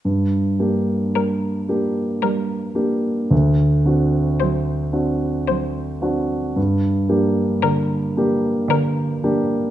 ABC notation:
X:1
M:3/4
L:1/8
Q:1/4=56
K:Gm
V:1 name="Violin"
z2 B2 B2 | z2 c2 c2 | z2 B2 B2 |]
V:2 name="Grand piano"
G,, [B,DG]2 [B,DG]2 [B,DG] | D,, [CD^F]2 [CDF]2 [CDF] | G,, [B,DG]2 [B,DG]2 [B,DG] |]
V:3 name="Cello" clef=bass
z2 G,2 G,2 | z2 ^F,2 F,2 | z2 D,2 D,2 |]